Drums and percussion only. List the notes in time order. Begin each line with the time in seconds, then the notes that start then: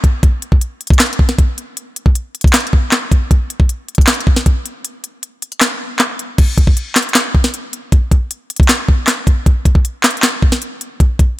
0.04 kick, closed hi-hat
0.23 kick, closed hi-hat
0.42 closed hi-hat
0.52 kick
0.61 closed hi-hat
0.81 closed hi-hat
0.87 kick, closed hi-hat
0.94 closed hi-hat
0.99 snare, clap, closed hi-hat
1.06 closed hi-hat
1.13 closed hi-hat
1.19 kick
1.29 snare
1.39 kick, closed hi-hat
1.58 closed hi-hat
1.77 closed hi-hat
1.96 closed hi-hat
2.06 kick
2.15 closed hi-hat
2.35 closed hi-hat
2.41 kick, closed hi-hat
2.48 closed hi-hat
2.53 snare, clap, closed hi-hat
2.60 closed hi-hat
2.67 closed hi-hat
2.73 kick
2.91 snare, clap, closed hi-hat
3.12 kick, closed hi-hat
3.31 kick, closed hi-hat
3.50 closed hi-hat
3.60 kick
3.69 closed hi-hat
3.88 closed hi-hat
3.95 kick, closed hi-hat
4.01 closed hi-hat
4.07 snare, clap, closed hi-hat
4.14 closed hi-hat
4.21 closed hi-hat
4.27 kick
4.36 snare
4.46 kick, closed hi-hat
4.66 closed hi-hat
4.85 closed hi-hat
5.04 closed hi-hat
5.23 closed hi-hat
5.42 closed hi-hat
5.52 closed hi-hat
5.61 snare, clap, closed hi-hat
5.99 snare, clap, closed hi-hat
6.19 closed hi-hat
6.38 kick, closed hi-hat, crash
6.58 kick, closed hi-hat
6.67 kick
6.77 closed hi-hat
6.95 snare, clap, closed hi-hat
7.03 closed hi-hat
7.09 closed hi-hat
7.14 snare, clap, closed hi-hat
7.35 kick
7.44 snare
7.54 closed hi-hat
7.73 closed hi-hat
7.92 kick, closed hi-hat
8.11 kick, closed hi-hat
8.31 closed hi-hat
8.50 closed hi-hat
8.56 kick, closed hi-hat
8.63 closed hi-hat
8.68 snare, clap, closed hi-hat
8.89 kick
9.07 snare, clap, closed hi-hat
9.27 kick, closed hi-hat
9.46 kick, closed hi-hat
9.65 kick, closed hi-hat
9.75 kick
9.85 closed hi-hat
10.03 snare, clap, closed hi-hat
10.11 closed hi-hat
10.17 closed hi-hat
10.22 snare, clap, closed hi-hat
10.42 kick
10.52 snare
10.62 closed hi-hat
10.81 closed hi-hat
11.00 kick, closed hi-hat
11.19 kick, closed hi-hat